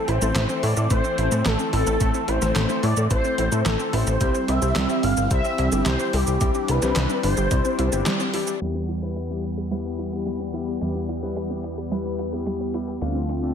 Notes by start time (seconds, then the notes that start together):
Already playing: E3 A3 C4
0.08 A1 E4 C5, closed hi-hat
0.22 A1 A3 C4 E4 A4 C5, cabasa
0.35 A1 A3, snare, clap, closed hi-hat, cabasa
0.49 A3 C4 E4 A4, cabasa
0.63 A2 E4 D5, open hi-hat
0.77 A2 A4, cabasa
0.90 A1 A3 C4 E4 C5, kick, closed hi-hat, cabasa
1.04 C4, cabasa
1.18 A1 E4, closed hi-hat
1.32 A2 A3 C4 E4 A4, cabasa
1.45 A1 A3 A4, snare, clap, closed hi-hat, cabasa
1.59 C4, cabasa
1.73 A1 A3 C4 E4 A4, open hi-hat
1.87 A1 A4, cabasa
2.01 A1 A3 C4 E4 A4, kick, closed hi-hat, cabasa
2.14 C4, cabasa
2.28 A1 E4 C5, closed hi-hat
2.42 A1 A3 C4 E4 A4 C5, snare, cabasa
2.56 A1 A3, snare, clap, closed hi-hat, cabasa
2.69 A3 C4 E4 A4, cabasa
2.83 A2 E4 D5, open hi-hat
2.97 A2 A4, cabasa
3.10 A1 A3 C4 E4 C5, kick, closed hi-hat, cabasa
3.24 C4, cabasa
3.38 A1 E4, closed hi-hat
3.52 A2 A3 C4 E4 A4, cabasa
3.66 A1 A3 A4, snare, clap, closed hi-hat, cabasa
3.79 C4, cabasa
3.93 A1 A3 C4 E4 A4 C5, open hi-hat
4.07 A1 A4, cabasa
4.21 C2 E3 G3 C4 E4 G4, kick, closed hi-hat, cabasa
4.34 C4, cabasa
4.48 C2 E4 E5, closed hi-hat
4.62 C2 G3 C4 E4 G4 C5, cabasa
4.76 C2 G3, snare, clap, closed hi-hat, cabasa
4.89 G3 C4 E4 G4, cabasa
5.03 G1 E4 F5, open hi-hat
5.17 G1 G4, cabasa
5.31 C2 G3 C4 E4 C5 E5, kick, closed hi-hat, cabasa
5.45 C4, cabasa
5.58 C2 E4, closed hi-hat
5.72 G1 G3 C4 E4 G4, cabasa
5.86 C2 G3 C5, snare, clap, closed hi-hat, cabasa
6.00 C4, cabasa
6.13 C2 G3 C4 E4 G4, open hi-hat
6.27 C2 G4, cabasa
6.41 C2 G3 C4 D4 E4 G4, kick, closed hi-hat, cabasa
6.55 C4, cabasa
6.68 C2 E4 B4, closed hi-hat
6.82 C2 G3 C4 E4 G4 C5, snare, cabasa
6.96 C2 G3, snare, clap, closed hi-hat, cabasa
7.10 G3 C4 E4 G4, cabasa
7.23 G1 E4 C5, open hi-hat
7.37 G1 G4, cabasa
7.51 C2 G3 C4 E4 C5, kick, closed hi-hat, cabasa
7.65 C4, cabasa
7.79 C2 E4, closed hi-hat
7.92 G1 G3 C4 E4 G4, cabasa
8.06 G3, snare, clap, closed hi-hat, cabasa
8.20 C4, cabasa
8.34 G3 C4 E4 G4, open hi-hat
8.47 G4, cabasa
8.61 E2 E3 G3 B3 E4 G4, closed hi-hat, crash
8.75 B3
8.89 E4, closed hi-hat
9.02 G3 B3 E4 G4 B4
9.16 G3, closed hi-hat
9.30 G3 B3 E4 G4
9.44 E4, closed hi-hat
9.57 G4
9.71 G3 B3 E4 B4, closed hi-hat
9.85 B3
9.99 E4, closed hi-hat
10.12 G3 B3 E4 G4
10.26 G3, closed hi-hat
10.40 B3
10.54 G3 B3 E4 G4, closed hi-hat
10.68 G4
10.81 E2 G3 B3 E4 G4, closed hi-hat
10.95 B3
11.09 E4, closed hi-hat
11.23 G3 B3 E4 G4 B4
11.36 G3, closed hi-hat
11.50 G3 B3 E4 G4
11.64 E4, closed hi-hat
11.78 G4
11.91 G3 B3 E4 B4, closed hi-hat
12.05 B3
12.19 E4, closed hi-hat
12.33 G3 B3 E4 G4
12.46 G3, closed hi-hat
12.60 B3
12.74 G3 B3 E4 G4, closed hi-hat
12.88 G4
13.02 D2 D3 F3 A3 C4 D4 F4, closed hi-hat
13.15 C4
13.29 D4, closed hi-hat
13.43 A3 C4 D4 F4 A4